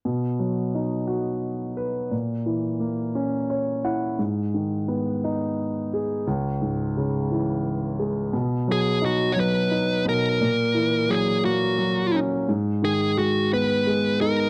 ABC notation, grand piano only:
X:1
M:6/8
L:1/8
Q:3/8=58
K:B
V:1 name="Grand piano"
z6 | z4 c f | z6 | z6 |
z6 | z6 | z6 |]
V:2 name="Grand piano" clef=bass
B,, F, D F2 B | A,, E, A, C2 E | G,, D, B, D2 G | C,, G,, C, E,2 G, |
B,, F, D F, D B,, | A,, E, F, A, F, C | G,, D, G, B, G, D |]